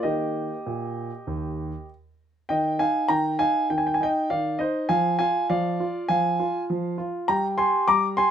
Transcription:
0.03 D#3 A#3 D#4 G4 D#5
0.66 A#2
1.27 D#2
2.49 D#3 D#5 G5
2.79 D#4 F5 G#5
3.08 D#3 G5 A#5
3.39 D#4 F5 G#5
3.70 D#3 G5
3.78 G#5
3.87 G5
3.94 G#5
4.01 D#4 D#5 G5
4.30 D#3 D5 F5
4.59 D#4 C5 D#5
4.89 F3 F5 G#5
5.19 F4 F5 G#5
5.50 F3 D5 F5
5.80 F4
6.08 F3 F5 G#5
6.40 F4
6.70 F3
6.98 F4
7.28 G3 G5 A#5
7.58 G4 G#5 C6
7.88 G3 A#5 D6
8.17 G4 G#5 C6

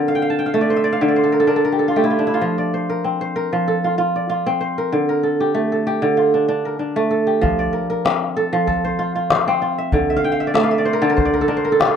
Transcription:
Already playing: D3 C4 F4 A#4 C5 D5
0.08 F5
0.15 G5
0.22 F5
0.30 A5
0.39 G5
0.46 F5
0.54 A3 E5
0.61 D5
0.70 C5
0.76 E5
0.84 D5
0.93 F5
1.01 D3 E5
1.08 D5
1.16 C5
1.24 A4
1.32 A#4
1.40 A4
1.47 D4 A#4
1.56 A4
1.65 A#4
1.72 G4
1.79 A4
1.88 F4
1.96 A3 G4
2.04 E4
2.10 F4
2.19 D4
2.27 E4
2.34 F4
2.41 F3
2.58 D5
2.74 C5
2.90 A#4
3.04 C4
3.21 C5
3.36 A#4
3.53 F3
3.68 A4
3.84 F4
3.98 F4
4.16 D5
4.29 F4
4.46 C4
4.61 C5
4.78 A#4
4.92 D3
5.09 A#4
5.23 A4
5.40 G4
5.54 A3
5.72 A4
5.87 G4
6.02 D3
6.17 F4
6.34 D4
6.48 D4
6.65 A#4
6.79 D4
6.96 A3
7.11 A4
7.27 G4
7.41 F3, calabash thump
7.59 D5
7.73 A#4
7.90 A#4
8.05 C4, calabash click
8.37 A4
8.53 F3
8.67 A4, calabash thump
8.85 C5
8.99 F4
9.15 F4
9.30 C5, calabash click
9.48 C4
9.62 F4
9.78 E5
9.92 D3, calabash thump
10.10 E5
10.16 F5
10.24 G5
10.32 F5
10.40 E5
10.47 D5
10.54 A3 E5, calabash click
10.63 F5
10.71 E5
10.78 D5
10.85 C5
10.93 A#4
11.02 D3 A4
11.10 A#4
11.17 C5, calabash thump
11.25 D5
11.34 A#4
11.41 A4
11.48 D4 A#4
11.57 C5
11.65 A#4
11.72 A4
11.80 G4, calabash click
11.87 F4

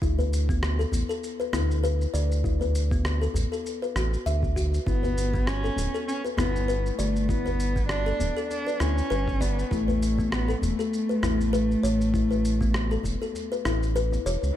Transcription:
0.02 D2 E4, kick, shaker
0.18 B4, djembe bass, shaker
0.33 shaker
0.49 B3, kick, shaker
0.63 cross-stick, shaker
0.79 A4, djembe slap, shaker
0.92 A1, djembe tone, djembe bass, shaker
1.09 A4, shaker
1.24 shaker
1.40 B4, djembe slap, shaker
1.53 D2 E4, cross-stick, djembe slap, djembe bass, shaker
1.70 djembe tone, shaker
1.84 B4, shaker
2.01 shaker
2.14 D2 D5, shaker
2.32 shaker
2.44 E4, kick, shaker
2.61 B4, djembe slap, djembe bass, shaker
2.75 shaker
2.91 B3, kick, shaker
3.05 cross-stick, shaker
3.21 A4, djembe slap, shaker
3.34 A1, djembe tone, djembe bass, shaker
3.52 A4, shaker
3.64 djembe slap, shaker
3.82 B4, shaker
3.96 A1 F#4, cross-stick, djembe tone, shaker
4.14 shaker
4.26 D2 E5, shaker
4.42 kick, djembe tone, shaker
4.56 F#4, kick, shaker
4.74 shaker
4.86 G1 B3 E4, kick, shaker
5.03 B4, djembe bass, shaker
5.18 shaker
5.34 B3, kick, shaker
5.47 C#4, cross-stick, shaker
5.64 A4, djembe slap, shaker
5.76 D1, djembe tone, djembe bass, shaker
5.94 A4, shaker
6.08 C#4, shaker
6.24 B4, djembe slap, shaker
6.37 G1 B3 E4, cross-stick, djembe slap, djembe bass, shaker
6.55 djembe tone, shaker
6.68 B4, shaker
6.86 shaker
6.98 G1 A3 D5, shaker
7.16 shaker
7.29 B3 E4, kick, shaker
7.45 B4, djembe slap, djembe bass, shaker
7.60 shaker
7.76 B3, kick, shaker
7.89 D4, cross-stick, shaker
8.06 A4, djembe slap, shaker
8.20 D1, djembe tone, djembe bass, shaker
8.37 A4, shaker
8.50 D4, djembe slap, shaker
8.67 B4, shaker
8.80 D2 C#4 E4, cross-stick, djembe tone, shaker
8.98 shaker
9.10 G1 B4, shaker
9.27 kick, djembe tone, shaker
9.41 B3 D5, kick, shaker
9.59 shaker
9.71 A1 A3 E4, kick, shaker
9.88 B4, djembe bass, shaker
10.03 shaker
10.18 B3, kick, shaker
10.32 B3, cross-stick, shaker
10.48 A4, djembe slap, shaker
10.62 E1 A3, djembe tone, djembe bass, shaker
10.79 A4, shaker
10.94 shaker
11.09 B4, djembe slap, shaker
11.23 A1 E4, cross-stick, djembe slap, djembe bass, shaker
11.40 djembe tone, shaker
11.53 B4, shaker
11.71 shaker
11.83 A1 C#5, shaker
12.01 shaker
12.14 E4, kick, shaker
12.31 B4, djembe slap, shaker
12.45 shaker
12.61 B3, kick, shaker
12.74 cross-stick, shaker
12.91 A4, djembe slap, shaker
13.03 E1, kick, djembe tone, djembe bass, shaker
13.22 A4, shaker
13.34 djembe slap, djembe tone, shaker
13.52 B4, shaker
13.65 A1 E4, cross-stick, djembe tone, shaker
13.83 shaker
13.96 B4, shaker
14.12 djembe tone, shaker
14.26 E1 C#5, shaker
14.43 C#2, shaker

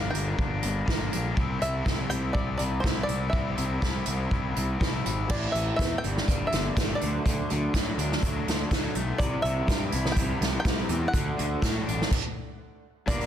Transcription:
Already playing: G2 D3 G3 A#3 D4 F5
0.10 G1 D4 G5
0.15 G3 A#3, closed hi-hat
0.38 G1, kick
0.62 G1, closed hi-hat
0.85 G1 D3 G3 A#3 D4, kick, snare
1.11 A#1 G3 A#3 D4, closed hi-hat
1.35 C2 C3 G3 C4 E4, kick
1.59 C2 G3 C4 E4 E5, closed hi-hat
1.82 C2 C3 G3 C4 E4, kick
1.87 snare
2.07 C2 G3 C4 E4 G5, closed hi-hat
2.33 C2 D5, kick
2.58 C2 D5, closed hi-hat
2.80 C2 C3 G3 C5, kick
2.84 C4 E4, snare
3.03 E4 D5
3.08 C2 G3 C4, closed hi-hat
3.30 C2 C3 G3 C4 E4 E5, kick
3.55 C2 G3 C4 E4, closed hi-hat
3.80 C3 G3 C4 E4, kick, snare
4.06 C2 G3 C4 E4, closed hi-hat
4.31 C2, kick
4.56 C2, closed hi-hat
4.79 C2 C3 G3 C4 E4, kick, snare
5.04 G#1 G3 C4 E4, closed hi-hat
5.28 A1 A2 E3 C4 E4 D5, kick, crash
5.52 A1 E3 E5, closed hi-hat
5.76 E2 A3 E5, kick, closed hi-hat
5.81 snare
5.98 G2 G3 G5
6.04 G1 A#3 D4, closed hi-hat
6.17 snare
6.27 G1 G3, kick, closed hi-hat
6.47 E5
6.52 G1 D3, snare, closed hi-hat
6.76 G1 G3, kick, snare, closed hi-hat
6.95 D5
7.00 D2 D3 F#3 A3 D4, closed hi-hat
7.25 D2 D3, kick, closed hi-hat
7.50 D2 D3, closed hi-hat
7.74 A2 F#3, kick, snare, closed hi-hat
7.97 D2 F#3 A3 D4, closed hi-hat
8.12 snare
8.23 D2 F#3, kick, closed hi-hat
8.47 D2 D3, snare, closed hi-hat
8.71 D2 F#3, kick, snare, closed hi-hat
8.95 B1 A3, closed hi-hat
9.18 C2 C3 E3 C4 E4 G4 D5, kick, closed hi-hat
9.42 C2 C3 E5, closed hi-hat
9.67 G2 G3, kick, snare, closed hi-hat
9.92 C2 E4, closed hi-hat
10.05 snare
10.12 C2 E3 G5
10.16 G3 C4 E4 G4, kick, closed hi-hat
10.41 C2 C3, snare, closed hi-hat
10.60 G5
10.65 C2 G3, kick, snare, closed hi-hat
10.89 E2 C4, closed hi-hat
11.08 F#5
11.12 D2 D3 A3 D4 F#4, kick, closed hi-hat
11.37 D2 D3, closed hi-hat
11.62 A2 F#3, kick, snare, closed hi-hat
11.86 A1 D4, closed hi-hat
12.02 snare
12.11 kick, crash
13.06 G1 G2 D3 G3 A#3 D4 G4 A#4 D5 A#5, kick, closed hi-hat
13.21 closed hi-hat

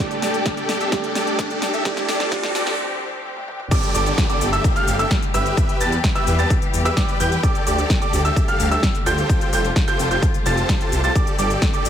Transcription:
Already playing: G3 G4, riser
0.00 A2 G3 A3 D4 G4 A4 D5
0.11 closed hi-hat
0.22 G4 A4 D5, snare, open hi-hat
0.34 closed hi-hat
0.46 kick, snare, closed hi-hat
0.57 G4 A4 D5, closed hi-hat
0.69 snare, open hi-hat
0.80 G4 A4 E5, closed hi-hat
0.91 G3 A3 D4 G4 D5, kick, snare, closed hi-hat
1.04 closed hi-hat
1.15 G4 A4 D5, snare, open hi-hat
1.27 closed hi-hat
1.39 kick, snare, closed hi-hat
1.50 G4 A4 D5, closed hi-hat
1.62 snare, open hi-hat
1.74 G4 A4 E5, closed hi-hat
1.84 F3 G3 A3 C4 D4 G4 A4 D5, kick, snare, closed hi-hat
1.97 snare, closed hi-hat
2.08 G4 A4 D5, snare, open hi-hat
2.20 snare, closed hi-hat
2.31 G3 A3 D4 G4 A4 D5, kick, snare, closed hi-hat
2.43 snare, closed hi-hat
2.55 G4 A4 D5, snare, open hi-hat
2.67 snare, closed hi-hat
3.37 high tom
3.48 mid tom
3.60 mid tom
3.71 D3 G3 A3 G4 A4 D5 D6, kick, closed hi-hat, crash, downlifter, shaker
3.83 closed hi-hat, shaker
3.95 G1 G4 A4 D5 D6, open hi-hat, shaker
4.06 closed hi-hat, shaker
4.18 kick, snare, closed hi-hat, shaker
4.29 G4 A4 D5 D6, closed hi-hat, shaker
4.41 G1, open hi-hat, shaker
4.53 G4 A4 E5 E6, closed hi-hat, shaker
4.64 kick, closed hi-hat, shaker
4.76 G4 A4 F5 F6, closed hi-hat, shaker
4.88 G1, open hi-hat, shaker
4.99 G4 A4 E5 E6, closed hi-hat, shaker
5.11 kick, snare, closed hi-hat, shaker
5.22 closed hi-hat, shaker
5.34 G1 G4 B4 E5 E6, open hi-hat, shaker
5.46 closed hi-hat, shaker
5.57 E3 G3 B3, kick, closed hi-hat, shaker
5.69 closed hi-hat, shaker
5.81 E2 G4 B4 A5 A6, open hi-hat, shaker
5.92 closed hi-hat, shaker
6.04 kick, snare, closed hi-hat, shaker
6.15 G4 B4 E5 E6, closed hi-hat, shaker
6.27 E2, open hi-hat, shaker
6.39 G4 B4 A5 A6, closed hi-hat, shaker
6.50 kick, closed hi-hat, shaker
6.62 closed hi-hat, shaker
6.74 E2, open hi-hat, shaker
6.85 G4 B4 E5 E6, closed hi-hat, shaker
6.97 G4 D5 D6, kick, snare, closed hi-hat, shaker
7.09 closed hi-hat, shaker
7.20 E2 G4 B4 G5 G6, open hi-hat, shaker
7.32 closed hi-hat, shaker
7.43 D3 G3 A3 G4 A4 D5 D6, kick, closed hi-hat, shaker
7.55 closed hi-hat, shaker
7.67 D2 G4 A4 D5 D6, open hi-hat, shaker
7.78 closed hi-hat, shaker
7.90 kick, snare, closed hi-hat, shaker
8.02 G4 A4 D5 D6, closed hi-hat, shaker
8.13 D2, open hi-hat, shaker
8.25 G4 A4 E5 E6, closed hi-hat, shaker
8.36 kick, closed hi-hat, shaker
8.48 G4 A4 F5 F6, closed hi-hat, shaker
8.60 D2, open hi-hat, shaker
8.71 G4 A4 E5 E6, closed hi-hat, shaker
8.83 kick, snare, closed hi-hat, shaker
8.95 closed hi-hat, shaker
9.06 D2 F4 G4 A4 C5 G5 G6, open hi-hat, shaker
9.18 closed hi-hat, shaker
9.29 C3 F4, kick, closed hi-hat, shaker
9.41 closed hi-hat, shaker
9.53 F1 F4 G4 A4 C5 G5 G6, open hi-hat, shaker
9.65 closed hi-hat, shaker
9.76 kick, snare, closed hi-hat, shaker
9.88 F4 G4 A4 C5 G5 G6, closed hi-hat, shaker
9.99 F1, open hi-hat, shaker
10.11 F4 G4 A4 C5 G5 G6, closed hi-hat, shaker
10.22 kick, closed hi-hat, shaker
10.34 closed hi-hat, shaker
10.46 F1 F4 G4 A4 C5 A5 A6, open hi-hat, shaker
10.57 closed hi-hat, shaker
10.69 kick, snare, closed hi-hat, shaker
10.81 closed hi-hat, shaker
10.92 C2, open hi-hat, shaker
11.04 F4 G4 A4 C5 A5 A6, closed hi-hat, shaker
11.15 D3 G3 A3 G4 D6, kick, closed hi-hat, shaker
11.27 closed hi-hat, shaker
11.39 G1 G4 A4 D5 D6, open hi-hat, shaker
11.50 closed hi-hat, shaker
11.62 kick, snare, closed hi-hat, shaker
11.74 G4 A4 D5 D6, closed hi-hat, shaker
11.85 G1, open hi-hat, shaker

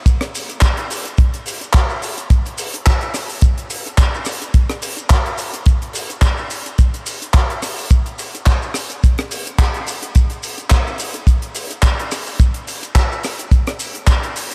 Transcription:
0.06 kick, closed hi-hat, maracas
0.21 cross-stick, closed hi-hat, maracas
0.35 open hi-hat, maracas
0.50 closed hi-hat, maracas
0.61 kick, clap, closed hi-hat, maracas
0.77 closed hi-hat, maracas
0.90 open hi-hat, maracas
1.05 closed hi-hat, maracas
1.17 kick, closed hi-hat, maracas
1.34 closed hi-hat, maracas
1.46 open hi-hat, maracas
1.61 closed hi-hat, maracas
1.73 kick, clap, closed hi-hat, maracas
1.90 maracas
2.02 open hi-hat, maracas
2.18 closed hi-hat, maracas
2.30 kick, closed hi-hat, maracas
2.46 closed hi-hat, maracas
2.58 open hi-hat, maracas
2.73 closed hi-hat, maracas
2.86 kick, clap, closed hi-hat, maracas
3.01 closed hi-hat, maracas
3.14 cross-stick, open hi-hat, maracas
3.29 open hi-hat, maracas
3.41 kick, closed hi-hat, maracas
3.58 closed hi-hat, maracas
3.70 open hi-hat, maracas
3.86 closed hi-hat, maracas
3.98 kick, clap, closed hi-hat, maracas
4.14 maracas
4.25 cross-stick, open hi-hat, maracas
4.42 closed hi-hat, maracas
4.54 kick, closed hi-hat, maracas
4.69 cross-stick, closed hi-hat, maracas
4.82 open hi-hat, maracas
4.97 closed hi-hat, maracas
5.10 kick, clap, closed hi-hat, maracas
5.26 closed hi-hat, maracas
5.38 open hi-hat, maracas
5.54 closed hi-hat, maracas
5.66 kick, closed hi-hat, maracas
5.82 closed hi-hat, maracas
5.93 open hi-hat, maracas
6.10 closed hi-hat, maracas
6.22 kick, clap, closed hi-hat, maracas
6.38 maracas
6.50 open hi-hat, maracas
6.66 closed hi-hat, maracas
6.78 kick, closed hi-hat, maracas
6.94 closed hi-hat, maracas
7.06 open hi-hat, maracas
7.22 closed hi-hat, maracas
7.34 kick, clap, closed hi-hat, maracas
7.50 closed hi-hat, maracas
7.62 cross-stick, open hi-hat, maracas
7.78 open hi-hat, maracas
7.90 kick, closed hi-hat, maracas
8.06 closed hi-hat, maracas
8.19 open hi-hat, maracas
8.35 closed hi-hat, maracas
8.46 kick, clap, closed hi-hat, maracas
8.62 maracas
8.74 cross-stick, open hi-hat, maracas
8.90 closed hi-hat, maracas
9.04 kick, closed hi-hat, maracas
9.18 cross-stick, closed hi-hat, maracas
9.31 open hi-hat, maracas
9.46 closed hi-hat, maracas
9.58 kick, clap, closed hi-hat, maracas
9.74 closed hi-hat, maracas
9.87 open hi-hat, maracas
10.02 closed hi-hat, maracas
10.15 kick, closed hi-hat, maracas
10.30 closed hi-hat, maracas
10.43 open hi-hat, maracas
10.58 closed hi-hat, maracas
10.70 kick, clap, closed hi-hat, maracas
10.87 maracas
10.98 open hi-hat, maracas
11.14 closed hi-hat, maracas
11.27 kick, closed hi-hat, maracas
11.42 closed hi-hat, maracas
11.55 open hi-hat, maracas
11.71 closed hi-hat, maracas
11.82 kick, clap, closed hi-hat, maracas
11.99 closed hi-hat, maracas
12.11 cross-stick, open hi-hat, maracas
12.26 open hi-hat, maracas
12.40 kick, closed hi-hat, maracas
12.54 closed hi-hat, maracas
12.67 open hi-hat, maracas
12.83 closed hi-hat, maracas
12.95 kick, clap, closed hi-hat, maracas
13.12 maracas
13.23 cross-stick, open hi-hat, maracas
13.39 closed hi-hat, maracas
13.51 kick, closed hi-hat, maracas
13.67 cross-stick, closed hi-hat, maracas
13.80 open hi-hat, maracas
13.95 closed hi-hat, maracas
14.07 kick, clap, closed hi-hat, maracas
14.23 closed hi-hat, maracas
14.36 open hi-hat, maracas
14.51 closed hi-hat, maracas

